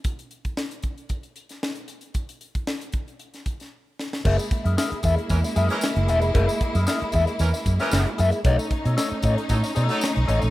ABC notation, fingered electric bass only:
X:1
M:4/4
L:1/16
Q:1/4=114
K:F#mix
V:1 name="Fingered electric bass" clef=bass
z16 | z16 | F,,, z2 F,, z2 E,, z E,, z F,, z2 F,,, E,,, ^E,,, | F,,, z2 F,, z2 E,, z E,, z F,, z F,,, z F,, z |
B,,, z2 B,, z2 =A,, z A,, z B,, z2 B,,, =A,,, ^A,,, |]